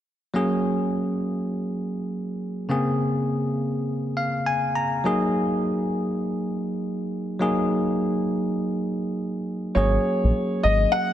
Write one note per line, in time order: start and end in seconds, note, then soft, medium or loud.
0.34 2.65 F#3 medium
0.34 2.66 A#3 medium
0.34 2.66 C#4 medium
0.34 2.66 G#4 medium
2.69 5.00 C#3 medium
2.69 5.01 A#3 medium
2.69 5.01 C4 medium
2.69 5.02 G#4 medium
4.17 4.44 F5 medium
4.46 4.74 G#5 medium
4.75 5.03 A#5 medium
5.04 7.36 F#3 medium
5.04 7.36 A#3 medium
5.04 7.37 D#4 medium
5.04 7.37 G#4 medium
7.40 9.71 F#3 medium
7.40 9.72 A#3 medium
7.40 9.72 D#4 medium
7.40 9.72 G#4 medium
9.75 9.98 G#1 medium
9.75 11.13 F#3 medium
9.75 11.13 A#3 medium
9.75 11.13 C#4 medium
9.75 11.13 G#4 medium
9.75 10.59 C#5 medium
10.24 10.32 A#1 medium
10.63 10.86 G#1 medium
10.63 10.91 D#5 medium
10.92 11.13 F#5 medium